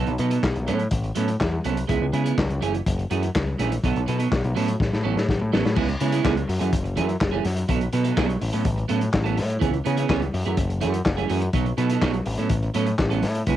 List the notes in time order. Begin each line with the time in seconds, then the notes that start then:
Already playing: F#3 B3 D#4 A4
0.07 B1, closed hi-hat
0.18 B2 F#3 B3 D#4 A4, closed hi-hat
0.30 F#3 B3 D#4 A4, closed hi-hat
0.43 B1, muted clean electric guitar stroke, kick, snare, clap
0.54 B1, muted clean electric guitar stroke, closed hi-hat
0.67 A2 F#3 B3 C#4 A4, closed hi-hat
0.79 muted clean electric guitar stroke, closed hi-hat
0.91 A1, kick, closed hi-hat
1.03 muted clean electric guitar stroke, closed hi-hat
1.15 A2 F#3 B3 C#4 A4, closed hi-hat
1.28 muted clean electric guitar stroke, closed hi-hat
1.41 E2, kick, snare, clap
1.52 muted clean electric guitar stroke
1.64 C2 F#3 B3 C#4 A4, closed hi-hat
1.77 muted clean electric guitar stroke, closed hi-hat
1.87 C#2 G#3 B3 E4 G#4, kick, closed hi-hat
2.01 C#2
2.13 C#3 G#3 B3 E4 G#4, closed hi-hat
2.24 G#3 B3 E4 G#4, closed hi-hat
2.37 C#2, muted clean electric guitar stroke, kick, snare, clap
2.49 C#2, muted clean electric guitar stroke, closed hi-hat
2.61 F#1 E3 A3 C#4 G#4, closed hi-hat
2.74 muted clean electric guitar stroke, closed hi-hat
2.86 F#1, kick, closed hi-hat
2.98 muted clean electric guitar stroke, closed hi-hat
3.10 F#2 E3 A3 C#4 G#4, closed hi-hat
3.23 muted clean electric guitar stroke, closed hi-hat
3.35 C#2, kick, snare, clap
3.47 muted clean electric guitar stroke
3.59 A#1 E3 A3 C#4 G#4, snare, closed hi-hat
3.71 muted clean electric guitar stroke, closed hi-hat
3.84 B1 F#3 B3 D#4 A4, kick, closed hi-hat
3.96 B1, closed hi-hat
4.06 B2 F#3 B3 D#4 A4, closed hi-hat
4.18 F#3 B3 D#4 A4, closed hi-hat
4.31 B1, muted clean electric guitar stroke, kick, snare, clap
4.43 B1, muted clean electric guitar stroke, closed hi-hat
4.55 A2 F#3 B3 C#4 A4, open hi-hat
4.68 muted clean electric guitar stroke, closed hi-hat
4.80 A1, kick, snare
4.91 A2, muted clean electric guitar stroke, snare
5.03 A1 F#3 B3 C#4 A4
5.16 A2, muted clean electric guitar stroke, snare
5.29 A1, kick, snare
5.40 A2, muted clean electric guitar stroke
5.52 A1 F#3 B3 C#4 A4, snare
5.64 A2, muted clean electric guitar stroke, snare
5.75 C#2 G#3 B3 E4 G#4, kick, crash
5.88 muted clean electric guitar stroke, closed hi-hat
6.00 C#3 G#3 B3 E4 G#4, closed hi-hat
6.12 G#3 B3 E4 G#4, closed hi-hat
6.23 C#2 G#3 B3 E4 G#4, kick, snare, clap
6.35 muted clean electric guitar stroke, closed hi-hat
6.48 F#2, muted clean electric guitar stroke, open hi-hat
6.59 F#2 E3 A3 C#4 G#4, closed hi-hat
6.73 F#1, kick, closed hi-hat
6.84 muted clean electric guitar stroke, closed hi-hat
6.96 F#2 E3 A3 C#4 G#4, closed hi-hat
7.07 muted clean electric guitar stroke, closed hi-hat
7.20 F#1, muted clean electric guitar stroke, kick, snare, clap
7.31 E3 A3 C#4 G#4
7.44 F#2, muted clean electric guitar stroke, snare, open hi-hat
7.57 muted clean electric guitar stroke, closed hi-hat
7.68 B1 F#3 B3 D#4 A4, kick, closed hi-hat
7.81 muted clean electric guitar stroke, closed hi-hat
7.93 B2 F#3 B3 D#4 A4, closed hi-hat
8.04 F#3 B3 D#4 A4, closed hi-hat
8.16 B1 F#3 B3 D#4 A4, kick, snare, clap
8.28 muted clean electric guitar stroke, closed hi-hat
8.41 A1, muted clean electric guitar stroke, open hi-hat
8.53 A2 F#3 B3 C#4 A4, closed hi-hat
8.65 A1, kick, closed hi-hat
8.76 muted clean electric guitar stroke, closed hi-hat
8.88 A2 F#3 B3 C#4 A4, closed hi-hat
9.00 muted clean electric guitar stroke, closed hi-hat
9.12 A1, muted clean electric guitar stroke, kick, snare, clap
9.24 F#3 B3 C#4 A4, closed hi-hat
9.36 A2, muted clean electric guitar stroke, snare, open hi-hat
9.49 muted clean electric guitar stroke, closed hi-hat
9.59 C#2 E3 B3 C#4 G#4, kick, closed hi-hat
9.72 muted clean electric guitar stroke, closed hi-hat
9.84 C#3 E3 B3 C#4 G#4, closed hi-hat
9.97 E3 B3 C#4 G#4, closed hi-hat
10.09 C#2 E3 B3 C#4 G#4, kick, snare, clap
10.22 muted clean electric guitar stroke, closed hi-hat
10.33 F#2, muted clean electric guitar stroke, open hi-hat
10.45 F#2 E3 A3 C#4 G#4, closed hi-hat
10.57 F#1, kick, closed hi-hat
10.68 muted clean electric guitar stroke, closed hi-hat
10.81 F#2 E3 A3 C#4 G#4, closed hi-hat
10.93 muted clean electric guitar stroke, closed hi-hat
11.05 F#1, muted clean electric guitar stroke, kick, snare, clap
11.17 E3 A3 C#4 G#4, closed hi-hat
11.28 F#2 E3 A3 C#4 G#4, open hi-hat
11.41 muted clean electric guitar stroke, closed hi-hat
11.53 B1 F#3 B3 D#4 A4, kick, closed hi-hat
11.66 muted clean electric guitar stroke, closed hi-hat
11.77 B2 F#3 B3 D#4 A4, closed hi-hat
11.90 F#3 B3 D#4 A4, closed hi-hat
12.01 B1 F#3 B3 D#4 A4, kick, snare, clap
12.14 muted clean electric guitar stroke, closed hi-hat
12.26 A1, muted clean electric guitar stroke, open hi-hat
12.38 A2 F#3 B3 C#4 A4, closed hi-hat
12.49 A1, kick, closed hi-hat
12.63 muted clean electric guitar stroke, closed hi-hat
12.74 A2 F#3 B3 C#4 A4, closed hi-hat
12.86 muted clean electric guitar stroke, closed hi-hat
12.98 A1, muted clean electric guitar stroke, kick, snare, clap
13.10 F#3 B3 C#4 A4, closed hi-hat
13.23 A2, muted clean electric guitar stroke, snare, open hi-hat
13.35 muted clean electric guitar stroke, closed hi-hat
13.47 C#2 G#3 B3 E4 G#4, kick, closed hi-hat